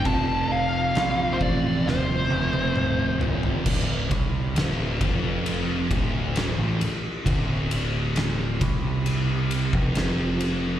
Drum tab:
CC |x---x-----------|x---------------|----------------|
RD |----------------|--x-x-x-x-x-x-x-|x-x-x-x-x-x-x-x-|
SD |----o---o-------|----o-------o---|----o-------o---|
T1 |----------oo----|----------------|----------------|
T2 |------------o---|----------------|----------------|
FT |--------------oo|----------------|----------------|
BD |o-----o---------|o-o---o---o-----|o-----o----o----|